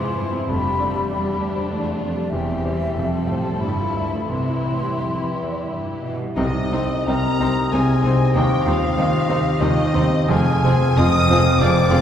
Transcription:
Already playing: F2 G#2 F3 C4 E4 F4 G#4 B4 C5 C6
0.03 G#4
0.17 G2 C5
0.33 C4
0.47 F1 F2 G3 D4 G4 B5
0.63 G4
0.78 D2 D5
0.94 G3
1.08 E2 D4 G4 D5
1.25 G4
1.39 D2 D5
1.55 C5
1.69 E2 A3 F4 D5
1.85 G4
1.99 F2 D5
2.16 G3
2.30 E1 E2 G3 C4 G4 E5
2.50 G4
2.63 E3 C5
2.82 G3
2.95 F1 F2 C4 A4
3.15 F4
3.28 A2 C5 A5
3.47 A3
3.61 G1 G2 E4 B5
3.80 F4
3.96 D2 E5
4.15 A3
4.29 C2 C3 E3 E4 G4 C6
4.49 E4
4.65 A2 E5
4.82 G3
4.99 F2 E5
5.18 E4
5.34 E2 E5
5.51 D5
5.67 G2 E5
5.86 E4
6.02 B2 E5
6.19 G3
6.36 C2 C3 G3 C4 D#4 G4 D#5
6.72 C2 G3 C4 D#4 C5
7.07 C2 C3 G3 C4 D#4 A#4 A#5
7.40 C2 G3 C4 D#4 C5
7.72 C2 C3 G3 C4 D#4 G#4 G#5
8.03 C2 G3 C4 D#4 C5
8.35 D#2 D#3 G3 C4 D#4 G4 G5
8.65 D#2 G3 C4 D#4 F4 G4 C5 F5
8.97 D#2 D#3 G3 C4 D#4
9.28 D#2 G3 C4 D#4 G4 C5
9.60 D#2 D#3 G3 C4 D#4 D#5
9.93 D#2 G3 C4 D#4 G4 C5
10.28 F1 F2 F3 C4 F4 G#4 F5 G#5
10.64 F1 F2 F3 C4 F4 G#4 C5
10.97 F1 F2 F3 C4 F4 G#4 D#5 D#6
11.28 F1 F2 F3 C4 F4 C5
11.32 F4 G#4
11.59 F1 F2 F3 C4 F4 G#4 D5 D6
11.89 F1 F2 F3 C4 F4 G#4 C5

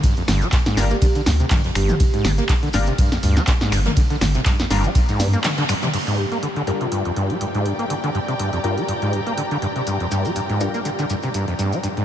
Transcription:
0.03 G2, kick, closed hi-hat, ride, maracas
0.17 F2, closed hi-hat
0.28 G1 G2, finger snap, snare, closed hi-hat, open hi-hat, mid tom, maracas
0.41 G3, snare, closed hi-hat, maracas
0.52 G2, kick, snare, clap, closed hi-hat, ride, maracas
0.66 G#2, snare, closed hi-hat
0.77 G1 G2 G3 D4 F4 A#4, snare, closed hi-hat, open hi-hat, maracas
0.91 A#3 G4, closed hi-hat, maracas
1.02 D3 G4, kick, closed hi-hat, ride, maracas
1.15 D3, closed hi-hat, maracas
1.26 D2 G2, snare, closed hi-hat, open hi-hat, maracas
1.40 C3, closed hi-hat, maracas
1.50 G2, kick, snare, clap, closed hi-hat, open hi-hat, mid tom, ride, maracas
1.64 F2, snare, closed hi-hat
1.75 G1 G2 G4, finger snap, closed hi-hat, open hi-hat, maracas
1.89 G3, closed hi-hat, mid tom, maracas
2.00 G2, kick, closed hi-hat, ride, maracas
2.14 G#2, closed hi-hat
2.25 G1 G2, finger snap, snare, closed hi-hat, open hi-hat, mid tom, maracas
2.38 A#3, snare, closed hi-hat, maracas
2.49 D3, kick, snare, clap, closed hi-hat, ride, maracas
2.63 D3, closed hi-hat
2.73 G1 G2 G3 D4 F4 A#4, snare, closed hi-hat, open hi-hat, maracas
2.87 C3, closed hi-hat, maracas
2.98 G2, kick, closed hi-hat, ride, maracas
3.11 F2, snare, closed hi-hat, maracas
3.23 D2 G2, closed hi-hat, open hi-hat, maracas
3.37 G3, snare, closed hi-hat, maracas
3.47 G2, kick, snare, clap, closed hi-hat, ride, maracas
3.61 G#2, snare, closed hi-hat
3.72 G1 G2, finger snap, snare, closed hi-hat, open hi-hat, maracas
3.85 A#3, snare, closed hi-hat, mid tom, maracas
3.96 D3, kick, closed hi-hat, ride, maracas
4.10 D3, closed hi-hat
4.21 G1 G2, finger snap, snare, closed hi-hat, open hi-hat, mid tom, maracas
4.35 C3, snare, closed hi-hat, maracas
4.46 G2, kick, snare, clap, closed hi-hat, ride, maracas
4.59 F2, snare, closed hi-hat, maracas
4.70 G1 G2 G3 D4 F4 A#4, snare, closed hi-hat, open hi-hat, maracas
4.84 G3, closed hi-hat, maracas
4.95 G2, kick, closed hi-hat, ride, maracas
5.09 G#2, closed hi-hat, maracas
5.20 G2, snare, closed hi-hat, open hi-hat, maracas
5.33 A#3, closed hi-hat, maracas
5.44 D3, snare, clap, closed hi-hat, open hi-hat, mid tom, ride, maracas
5.58 D3, snare, closed hi-hat
5.69 G2, finger snap, snare, closed hi-hat, open hi-hat, maracas
5.82 C3, snare, closed hi-hat, mid tom, maracas
5.93 G2 G4, closed hi-hat, crash
6.07 G#2, closed hi-hat
6.18 G2 G4, closed hi-hat
6.27 D5
6.32 A#3, closed hi-hat
6.43 D3 G5, closed hi-hat
6.56 D3, closed hi-hat
6.67 G2 G3 D4 F4 A#4, closed hi-hat
6.81 C3, closed hi-hat
6.92 G2, closed hi-hat
7.05 F2, closed hi-hat
7.16 G2, closed hi-hat
7.30 G3, closed hi-hat
7.41 G2, closed hi-hat
7.55 G#2, closed hi-hat
7.60 A#5
7.66 G2, closed hi-hat
7.79 A#3, closed hi-hat
7.90 D3, closed hi-hat
8.04 D3, closed hi-hat
8.15 G2, closed hi-hat
8.28 C3, closed hi-hat
8.39 G2, closed hi-hat
8.53 F2, closed hi-hat
8.64 G2 G3 D4 F4 A#4, closed hi-hat
8.77 G3, closed hi-hat
8.88 G2, closed hi-hat
9.02 G#2, closed hi-hat
9.13 G2, closed hi-hat
9.27 A#3, closed hi-hat
9.38 D3, closed hi-hat
9.51 D3, closed hi-hat
9.62 G2, closed hi-hat
9.76 C3, closed hi-hat
9.87 G2, closed hi-hat, maracas
10.00 F2, closed hi-hat
10.11 G2, closed hi-hat, maracas
10.25 G3, closed hi-hat, maracas
10.36 G2, closed hi-hat, maracas
10.50 G#2, closed hi-hat
10.61 G2 G3 D4 F4 A#4, closed hi-hat, maracas
10.74 A#3, closed hi-hat, maracas
10.85 D3, closed hi-hat, maracas
10.99 D3, closed hi-hat, maracas
11.10 G2, closed hi-hat, maracas
11.22 C3, closed hi-hat, maracas
11.34 G2, closed hi-hat, maracas
11.48 F2, closed hi-hat
11.59 G2, closed hi-hat, maracas
11.72 G3, closed hi-hat, maracas
11.83 G2, closed hi-hat, maracas
11.97 G#2, closed hi-hat

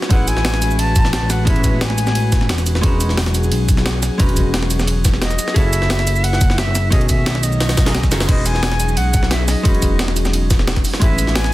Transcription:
Already playing: G#3 C#4 F#4 B4
0.02 snare
0.09 A1 G#3 C#4 D#4 E4 B4 F#5, kick, closed hi-hat, ride
0.28 G#5, closed hi-hat, ride, shaker
0.36 A1, snare
0.45 snare, closed hi-hat, open hi-hat
0.54 snare
0.62 closed hi-hat, ride, shaker
0.71 shaker
0.79 A5, closed hi-hat, ride
0.96 kick, closed hi-hat, ride, shaker
1.05 snare
1.13 A5, snare, closed hi-hat, ride
1.22 A1
1.30 F#5, snare, closed hi-hat, ride, shaker
1.45 A1 G#3 B3 C#4 E4 B4 E5, kick, closed hi-hat, ride
1.56 ride
1.64 kick, closed hi-hat, ride, shaker
1.73 A1
1.81 G#5, snare, closed hi-hat, ride
1.90 snare
1.98 closed hi-hat, ride, shaker
2.07 snare, shaker
2.15 closed hi-hat, ride
2.32 kick, snare, closed hi-hat, ride, shaker
2.41 snare
2.49 E1, snare, closed hi-hat, ride
2.58 snare, ride, shaker
2.66 closed hi-hat, ride, shaker
2.75 snare
2.81 E1 F#3 G#3 C#4 D#4 F#4 G#4 B4, kick, closed hi-hat, ride
3.01 closed hi-hat, ride, shaker
3.09 snare
3.17 snare, closed hi-hat, open hi-hat
3.26 snare
3.35 closed hi-hat, ride, shaker
3.43 shaker
3.51 B1, closed hi-hat, ride
3.69 kick, closed hi-hat, ride, shaker
3.77 snare
3.86 snare, closed hi-hat, ride
4.03 snare, closed hi-hat, ride, shaker
4.18 E1 G#3 C#4 D#4 F#4 B4, kick, closed hi-hat, ride
4.29 ride
4.37 kick, closed hi-hat, ride, shaker
4.46 E1
4.54 snare, closed hi-hat, ride
4.62 snare
4.70 closed hi-hat, ride, shaker
4.79 snare, shaker
4.87 closed hi-hat, ride
5.05 kick, snare, closed hi-hat, ride, shaker
5.14 snare
5.22 D#5, snare, closed hi-hat, ride
5.31 snare, ride, shaker
5.39 closed hi-hat, ride, shaker
5.48 snare
5.54 F#1 C#4 E4 F#4 G#4 A4 E5, kick, closed hi-hat, ride
5.73 closed hi-hat, ride, shaker
5.82 F#1, snare
5.90 snare, closed hi-hat, open hi-hat
5.99 snare
6.07 closed hi-hat, ride, shaker
6.16 shaker
6.24 F#5, closed hi-hat, ride
6.33 snare
6.41 kick, closed hi-hat, ride, shaker
6.50 snare
6.58 E5, snare, closed hi-hat, ride
6.67 F#1
6.75 snare, closed hi-hat, ride, shaker
6.90 B1 D#3 A3 C#4 F#4 G#4 D#5, kick, closed hi-hat, ride
7.01 ride
7.09 E5, kick, closed hi-hat, ride, shaker
7.18 B1
7.26 snare, closed hi-hat, ride
7.35 snare
7.43 D#5, closed hi-hat, ride, shaker
7.52 shaker
7.60 snare, closed hi-hat, open hi-hat
7.69 snare, open hi-hat
7.77 kick, snare, closed hi-hat, open hi-hat, shaker
7.85 A3 C#4 D#4 F#4 G#4, snare, open hi-hat
7.94 snare, closed hi-hat, ride
8.03 kick, snare, shaker
8.11 F#1 A3 C#4 D#4 F#4 G#4, snare, closed hi-hat, open hi-hat, shaker
8.20 snare, open hi-hat
8.27 E1 F#3 G#3 C#4 D#4 F#4 G#4 B4 D#5, kick, closed hi-hat, crash, ride
8.46 G#5, closed hi-hat, ride, shaker
8.55 snare
8.63 snare, closed hi-hat, open hi-hat
8.72 snare
8.80 closed hi-hat, ride, shaker
8.89 shaker
8.97 B1 F#5, closed hi-hat, ride
9.14 kick, closed hi-hat, ride, shaker
9.23 snare
9.31 E5, snare, closed hi-hat, ride
9.48 D#5, snare, open hi-hat, ride, shaker
9.63 E1 G#3 C#4 D#4 F#4 B4, kick, closed hi-hat, ride
9.74 ride
9.82 kick, closed hi-hat, ride, shaker
9.91 E1
9.99 snare, closed hi-hat, ride
10.08 snare
10.16 closed hi-hat, ride, shaker
10.25 snare, shaker
10.33 closed hi-hat, ride
10.50 kick, snare, closed hi-hat, ride, shaker
10.59 snare
10.68 snare, closed hi-hat, ride
10.76 kick, snare, ride
10.85 G#3 B4 D#6, open hi-hat, ride, shaker
10.94 snare
11.00 A1 G#3 B3 C#4 E4 B4 E5, kick, closed hi-hat, ride
11.18 closed hi-hat, ride, shaker
11.27 A1, snare
11.35 G#5, snare, closed hi-hat, open hi-hat
11.44 snare

